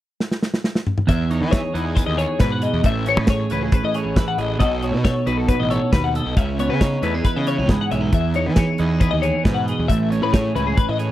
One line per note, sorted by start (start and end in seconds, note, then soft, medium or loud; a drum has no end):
0.20 snare medium
0.32 snare medium
0.43 snare medium
0.54 snare medium
0.64 snare medium
0.75 snare medium
0.87 mid tom medium
0.98 mid tom medium
1.07 2.83 E2 medium
1.07 1.43 E2 medium
1.07 1.30 E5 medium
1.07 kick loud
1.07 closed hi-hat medium
1.30 1.74 D#4 soft
1.30 1.42 C#5 medium
1.30 closed hi-hat medium
1.41 1.59 E3 medium
1.41 1.51 B4 medium
1.51 1.95 G#4 medium
1.51 1.74 C#5 medium
1.51 kick loud
1.51 snare loud
1.51 closed hi-hat medium
1.74 2.01 E2 medium
1.74 3.50 E3 medium
1.74 2.86 D#4 soft
1.74 1.85 B4 medium
1.74 closed hi-hat medium
1.85 1.95 G#4 medium
1.95 2.17 G#4 soft
1.95 2.06 B4 medium
1.95 kick medium
1.95 snare soft
1.95 closed hi-hat medium
2.06 2.25 D#2 medium
2.06 2.17 D#5 medium
2.18 2.61 G#4 medium
2.18 2.40 C#5 medium
2.18 closed hi-hat medium
2.39 2.67 G#2 medium
2.39 2.84 B2 medium
2.39 2.86 B4 medium
2.39 2.51 B4 medium
2.39 kick medium
2.39 snare medium
2.39 closed hi-hat medium
2.52 2.63 F#5 medium
2.62 2.81 G#4 medium
2.62 2.84 D#5 medium
2.62 closed hi-hat medium
2.73 2.82 E2 medium
2.83 3.17 A1 medium
2.83 4.57 A2 medium
2.83 3.07 E5 medium
2.83 kick loud
2.83 closed hi-hat medium
3.06 3.51 C#4 medium
3.06 3.19 C#5 medium
3.06 closed hi-hat medium
3.17 3.44 A2 medium
3.17 3.29 B4 medium
3.27 3.93 G#4 medium
3.27 3.51 C#5 medium
3.27 kick loud
3.27 snare loud
3.27 closed hi-hat medium
3.50 3.68 C#2 medium
3.50 4.15 E3 medium
3.50 4.59 C#4 medium
3.50 3.63 B4 medium
3.50 closed hi-hat medium
3.63 3.74 G#4 medium
3.72 4.16 B4 soft
3.72 3.84 B4 medium
3.72 kick loud
3.72 closed hi-hat medium
3.83 4.05 A2 medium
3.83 3.96 D#5 medium
3.94 4.38 G#4 medium
3.94 4.18 C#5 medium
3.94 closed hi-hat medium
4.05 4.23 A1 medium
4.16 4.57 E3 medium
4.16 4.61 B4 medium
4.16 4.28 B4 medium
4.16 kick medium
4.16 snare loud
4.16 closed hi-hat medium
4.28 4.38 F#5 medium
4.38 4.56 A1 medium
4.38 4.58 G#4 medium
4.38 4.59 D#5 medium
4.38 closed hi-hat soft
4.59 4.93 B1 loud
4.59 5.91 B2 medium
4.59 5.26 D#4 soft
4.59 4.82 F#4 medium
4.59 5.03 A4 medium
4.59 4.84 D#5 medium
4.59 kick medium
4.59 closed hi-hat medium
4.82 5.26 F#4 soft
4.82 4.94 C#5 medium
4.82 closed hi-hat soft
4.92 5.10 B2 medium
4.92 5.04 B4 medium
5.04 5.48 A4 medium
5.04 5.26 C#5 medium
5.04 kick medium
5.04 snare loud
5.04 closed hi-hat medium
5.26 5.53 B1 medium
5.26 6.40 D#4 medium
5.26 6.34 F#4 medium
5.26 5.38 B4 medium
5.26 closed hi-hat medium
5.38 5.48 A4 medium
5.48 5.70 B4 soft
5.48 5.59 B4 medium
5.48 kick medium
5.48 closed hi-hat medium
5.60 5.77 A1 medium
5.60 5.70 D#5 medium
5.70 5.92 A4 medium
5.70 5.92 C#5 medium
5.70 closed hi-hat medium
5.92 6.19 D#2 medium
5.92 6.36 B2 medium
5.92 6.03 B4 medium
5.92 6.15 B4 medium
5.92 kick medium
5.92 snare loud
5.92 closed hi-hat medium
6.04 6.14 F#5 medium
6.14 6.34 A4 medium
6.14 6.37 D#5 medium
6.14 closed hi-hat medium
6.26 6.34 B1 medium
6.37 6.70 C#2 medium
6.37 7.03 C#3 medium
6.37 6.59 E5 medium
6.37 kick medium
6.37 closed hi-hat medium
6.59 7.03 B3 soft
6.59 6.70 C#5 medium
6.59 closed hi-hat medium
6.69 6.96 C#3 medium
6.69 6.81 B4 medium
6.81 7.47 D#4 medium
6.81 7.03 C#5 medium
6.81 kick loud
6.81 snare loud
6.81 closed hi-hat medium
7.02 7.20 E2 medium
7.02 8.78 E3 medium
7.02 7.14 A3 soft
7.02 7.15 B4 medium
7.02 closed hi-hat medium
7.14 8.13 B3 soft
7.14 7.25 G#4 medium
7.25 7.36 B4 medium
7.25 7.69 B4 soft
7.25 kick medium
7.25 snare soft
7.25 closed hi-hat medium
7.36 7.60 C#3 medium
7.36 7.47 D#5 medium
7.47 7.58 C#4 medium
7.47 7.70 C#5 medium
7.47 closed hi-hat medium
7.58 7.76 C#2 medium
7.58 7.90 D#4 soft
7.69 8.10 G#2 medium
7.69 8.57 G#4 soft
7.69 7.80 B4 medium
7.69 kick medium
7.69 snare medium
7.69 closed hi-hat medium
7.81 7.91 F#5 medium
7.90 8.09 B1 medium
7.90 8.01 C#4 soft
7.90 8.13 E5 medium
7.90 closed hi-hat medium
8.01 8.12 D#4 soft
8.12 9.89 E2 medium
8.12 8.48 E2 loud
8.12 8.36 E5 medium
8.12 kick loud
8.12 closed hi-hat medium
8.34 8.79 D#4 soft
8.34 8.46 C#5 medium
8.34 closed hi-hat soft
8.46 8.64 E3 medium
8.46 8.57 B4 medium
8.56 9.01 G#4 soft
8.56 8.80 C#5 medium
8.56 kick loud
8.56 snare loud
8.56 closed hi-hat medium
8.78 9.06 E2 medium
8.78 10.54 E3 medium
8.78 9.92 D#4 medium
8.78 8.90 B4 medium
8.78 closed hi-hat medium
8.90 9.00 G#4 medium
9.00 9.22 G#4 soft
9.00 9.12 B4 medium
9.00 kick loud
9.00 closed hi-hat medium
9.11 9.30 D#2 medium
9.11 9.22 D#5 medium
9.22 9.68 G#4 medium
9.22 9.44 C#5 medium
9.22 closed hi-hat medium
9.44 9.72 G#2 medium
9.44 9.89 B2 medium
9.44 9.56 B4 medium
9.44 9.92 B4 medium
9.44 kick loud
9.44 snare medium
9.44 closed hi-hat medium
9.54 9.66 F#5 medium
9.66 9.88 G#4 medium
9.66 9.88 D#5 medium
9.66 closed hi-hat medium
9.79 9.88 E2 medium
9.88 10.22 A1 medium
9.88 11.12 A2 medium
9.88 10.10 E5 medium
9.88 kick medium
9.88 closed hi-hat medium
10.10 10.55 C#4 soft
10.10 10.22 C#5 medium
10.10 closed hi-hat soft
10.22 10.49 A2 medium
10.22 10.34 B4 medium
10.33 10.98 G#4 medium
10.33 10.55 C#5 medium
10.33 kick loud
10.33 snare loud
10.33 closed hi-hat medium
10.55 10.73 C#2 medium
10.55 11.12 E3 medium
10.55 11.12 C#4 medium
10.55 10.67 B4 medium
10.55 closed hi-hat medium
10.67 10.78 G#4 medium
10.77 11.12 B4 soft
10.77 10.89 B4 medium
10.77 kick loud
10.77 closed hi-hat medium
10.89 11.10 A2 medium
10.89 10.99 D#5 medium
10.99 11.12 G#4 medium
10.99 11.12 C#5 medium
10.99 closed hi-hat medium